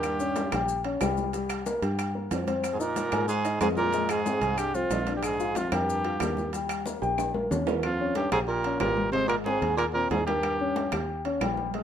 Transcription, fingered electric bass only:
Already playing: D#2
0.53 A#1
1.01 C2
1.82 G2
2.31 F2
3.13 G#2
3.61 F2
4.41 C2
4.90 A#1
5.72 F2
6.21 D#2
7.02 A#1
7.51 D#2
8.32 A#1
8.81 G#1
9.62 D#2
10.11 D#2
10.93 D#2
11.41 A#1

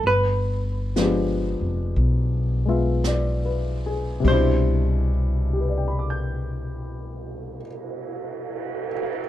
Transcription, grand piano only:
0.96 F3 G#3 B3 D4
1.01 G4
2.66 G#3 B3 F4 E5
3.06 D5
3.45 B4
3.86 G#4
4.20 C3 G3
4.26 B2 D4
4.32 E4
5.53 G4
5.60 B4
5.69 D5
5.78 G5
5.88 B5
5.99 D6
6.10 G6

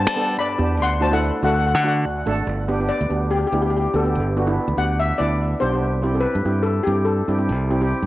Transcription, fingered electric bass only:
0.07 G3
0.38 G2
0.59 E2
0.80 D2
1.43 D2
1.75 D3
2.05 D2
2.26 G#1
2.46 G1
3.01 D2
3.10 D2
3.52 D2
3.94 D2
4.15 G1
4.68 D2
4.77 D2
5.20 D2
5.62 B1
5.82 C2
6.35 G2
6.45 G2
6.87 G2
7.28 G2
7.49 C2
8.02 G2

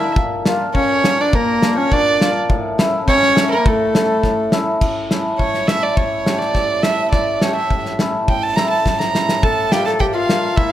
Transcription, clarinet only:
Already playing: E4
0.76 C#4
1.20 D4
1.36 A#3
1.78 C#4
1.93 D4
3.07 C#4
3.58 A#3
3.65 A3
9.44 A4
9.72 G4
9.86 A4
10.01 G4
10.15 F4
10.57 E4

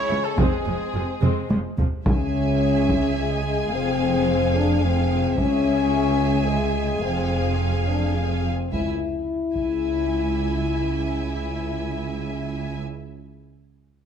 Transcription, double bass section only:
0.10 C#2
0.39 F1
0.66 F1
0.95 F1
1.22 F1
1.50 F1
1.78 F1
2.06 C#2
3.72 F1
5.38 C#2
7.04 F1
8.72 C#2
9.55 C#2

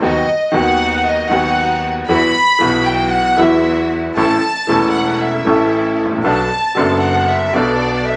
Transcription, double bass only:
0.02 D#2
0.53 D#2
1.31 D#2
2.08 E2
2.60 B1
3.38 E2
4.16 A1
4.68 E1
5.46 A1
5.99 A1
6.25 B1
6.77 F#1
7.55 B1

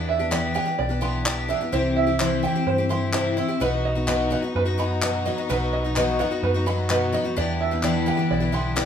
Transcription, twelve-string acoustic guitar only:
Already playing: E3 B3 D4 G4
0.19 B3 D4 G4
0.31 E3 B3 D4 G4
0.54 E3 B3 D4 G4
0.66 B3 D4 G4
0.89 B3 D4 G4
1.01 E3 B3 D4 G4
1.25 E3 B3 D4 G4
1.48 E3 B3 D4 G4
1.61 B3 D4 G4
1.72 C3 E3 C4 E4 G4
2.07 C4 E4 G4
2.20 C3 E3 C4 E4 G4
2.43 E3 C4 E4 G4
2.55 C4 E4 G4
2.78 C4 E4 G4
2.89 E3 C4 E4 G4
3.13 C3 E3 C4 E4 G4
3.37 E3 C4 E4 G4
3.49 C4 E4 G4
3.60 B2 F#3 B3 D#4 F#4
3.95 B3 D#4 F#4
4.07 B2 F#3 B3 D#4 F#4
4.30 F#3 B3 D#4 F#4
4.42 B3 D#4 F#4
4.65 B3 D#4 F#4
4.78 F#3 B3 D#4 F#4
5.01 B2 F#3 B3 D#4 F#4
5.26 F#3 B3 D#4 F#4
5.38 B3 D#4 F#4
5.49 B2 F#3 B3 D#4 F#4
5.84 B3 D#4 F#4
5.96 B2 F#3 B3 D#4 F#4
6.19 F#3 B3 D#4 F#4
6.31 B3 D#4 F#4
6.54 B3 D#4 F#4
6.66 F#3 B3 D#4 F#4
6.89 B2 F#3 B3 D#4 F#4
7.12 F#3 B3 D#4 F#4
7.25 B3 D#4 F#4
7.36 E3 B3 D4 G4
7.71 B3 D4 G4
7.83 E3 B3 D4 G4
8.06 E3 B3 D4 G4
8.17 B3 D4 G4
8.40 B3 D4 G4
8.52 E3 B3 D4 G4
8.76 E3 B3 D4 G4

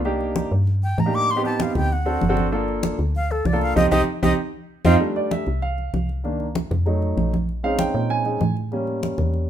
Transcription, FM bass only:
Already playing: C2
0.52 G2
0.98 A2
1.75 D2
2.22 G1
2.99 D2
3.45 C2
3.76 C2
3.92 C2
4.23 C2
4.85 F2
5.47 C2
5.94 C2
6.71 F2
7.17 A#1
7.94 A#2
8.41 A2
9.18 E2

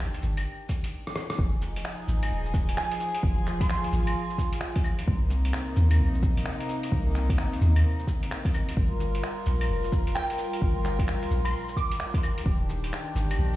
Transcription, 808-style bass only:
0.23 G1
1.39 F1
2.08 G#1
2.31 D#1
3.23 F1
3.93 G#1
5.08 C2
5.77 D#2
6.00 A#1
6.92 C2
7.61 D#2
8.77 G1
9.46 A#1
9.70 F1
10.62 G1
11.31 A#1
12.46 D#1
13.15 G1
13.38 A#1

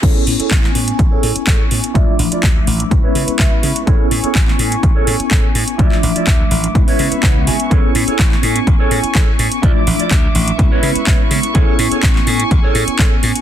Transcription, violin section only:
0.03 G#5 C#6
1.95 E5 D6
2.91 B4 C#6
3.87 G#5
5.79 E5 D6
6.75 B4 E5 C#6
7.71 G#5
9.63 E5 D6
10.59 B4 C#6
11.55 G#5

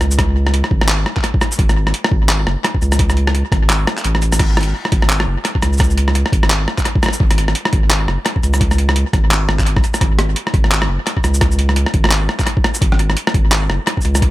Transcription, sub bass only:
0.01 C#2
0.71 G#1
1.59 G#1
2.12 G#1
2.47 F#1
2.82 C#2
3.52 G#1
4.05 A1
4.39 G#1
4.92 G#1
5.27 F#1
5.63 C#2
6.33 G#1
7.20 G#1
7.73 G#1
8.08 F#1
8.43 C#2
9.13 G#1
9.48 G#1
10.01 G#1
10.54 G#1
10.89 F#1
11.24 C#2
11.94 G#1
12.82 G#1
13.34 G#1
13.69 F#1
14.05 C#2

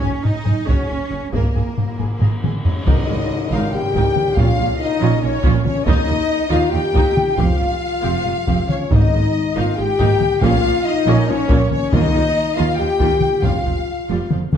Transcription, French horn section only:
1.34 G#4 D#5
2.66 C#4
2.86 D#4
3.52 F4
3.73 G4
4.38 F4
4.79 D#4
5.21 C#4
5.65 C#4
5.85 D#4
6.49 F4
6.70 G4
7.36 F4
8.69 C#4
8.90 D#4
9.57 F4
9.78 G4
10.42 F4
10.86 D#4
11.28 C#4
11.73 C#4
11.95 D#4
12.57 F4
12.78 G4
13.44 F4

